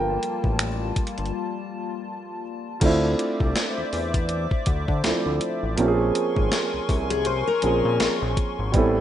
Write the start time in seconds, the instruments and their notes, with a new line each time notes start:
Already playing: analog synth bass G1, grand piano F3 A#3 A4 A#4 G5, analog synth pad G3 A#3 F4 A5
0.23 closed hi-hat
0.44 analog synth bass A1, kick
0.59 finger snap, closed hi-hat
0.96 analog synth bass G1, kick, closed hi-hat
1.07 closed hi-hat
1.18 analog synth bass G1, closed hi-hat
1.26 closed hi-hat
2.80 analog synth bass D2, grand piano A3 C4 D4 F4, analog synth pad C5 D5 E5 D6, kick, closed hi-hat, crash
2.85 grand piano E4
3.19 closed hi-hat
3.40 analog synth bass C2, kick
3.56 snare, closed hi-hat
3.78 analog synth bass E2
3.93 analog synth bass E2, closed hi-hat, open hi-hat
4.14 kick, closed hi-hat
4.29 closed hi-hat
4.51 kick
4.66 analog synth bass D2, kick, closed hi-hat
4.88 analog synth bass D3, kick
5.03 analog synth bass D2, grand piano F3 A3 C4 D4 E4, snare, closed hi-hat
5.26 analog synth bass D2
5.41 closed hi-hat
5.63 analog synth bass A1
5.76 analog synth bass A#1, grand piano F3 A#3 C4 C#4, analog synth pad A#4 G#5 C6 C#6, closed hi-hat
5.82 grand piano G4
5.88 grand piano G#4
6.15 closed hi-hat
6.36 analog synth bass G#1, kick
6.52 snare, closed hi-hat
6.74 analog synth bass C2
6.89 analog synth bass C2, kick, closed hi-hat, open hi-hat
7.10 steel-string acoustic guitar G#4, closed hi-hat
7.25 steel-string acoustic guitar C5, closed hi-hat
7.47 steel-string acoustic guitar A#4
7.62 analog synth bass A#1, grand piano F3 A#3 C4 C#4 G#4, closed hi-hat
7.85 analog synth bass A#2
8.00 analog synth bass A#1, snare, closed hi-hat
8.22 analog synth bass A#1
8.37 kick, closed hi-hat
8.59 analog synth bass G#1
8.72 analog synth bass A1, grand piano G3 B3 C4 E4, analog synth pad A4 G5 B5 C6, kick, closed hi-hat
8.78 grand piano A4